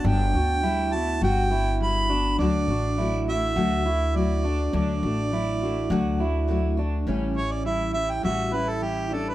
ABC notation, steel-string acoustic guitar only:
X:1
M:4/4
L:1/8
Q:1/4=102
K:D
V:1 name="Steel-string acoustic guitar"
[G,B,DF] [B,DF] [G,B,DF] [B,DF] [G,B,DF] [B,DF] [G,B,DF] [B,DF] | [D,F,A,DF] [A,DF] [F,A,DF] [A,DF] [D,F,A,DF] [A,DF] [F,A,DF] [A,DF] | [D,F,A,DF] [A,DF] [F,A,DF] [A,DF] [D,F,A,DF] [A,DF] [F,A,DF] [A,DF] | [K:Amix] [A,,E,G,CE] [G,CE] [E,G,CE] [G,CE] [A,,E,G,CE] [G,CE] [E,G,CE] [G,CE] |]